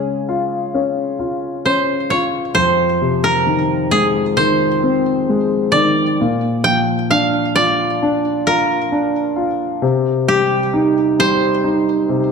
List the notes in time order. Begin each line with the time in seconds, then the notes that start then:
Already playing: C#3 G#3 C#4 G#4
0.29 F4
0.74 C#4
1.19 F4
1.66 C#4 C5
2.10 F4 C#5
2.55 F2 C5
3.02 C3
3.24 A#4
3.46 D#3
3.91 G#3 G#4
4.37 D#3 C5
4.83 C4
5.29 G#3
5.72 D#3 D5
6.21 A#2
6.64 F3 G5
7.11 D4 F5
7.56 F4 D5
8.02 D4
8.47 F4 A#4
8.92 D4
9.36 F4
9.82 C3
10.28 G3 G4
10.74 D#4
11.19 G3 C5
11.64 D#4
12.09 C3